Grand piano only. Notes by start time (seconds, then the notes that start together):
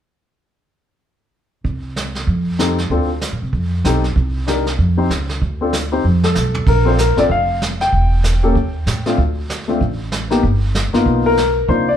2.59 C4 D#4 G4 A4
2.91 C4 D4 F4 A4
3.85 C4 D#4 G4 A4
4.47 D4 D#4 G4 A#4
4.97 C4 D#4 G4 C5
5.61 C4 D4 F4 A4
5.92 C4 D#4 G4 C5
6.24 A4
6.68 A#4
6.85 C4 D4 F4 A4 C5
6.99 A#4
7.17 C4 D4 F4 A4 D5
7.31 F5
7.81 G5
8.43 A#3 C#4 G4 A4
9.06 A3 C4 D4 F4
9.68 A3 C4 D4 F4
10.30 A#3 B3 D#4 G4
10.93 A#3 B3 D#4 F4
11.26 A#4
11.68 A#3 D4 D#4 F4 C5
11.89 D5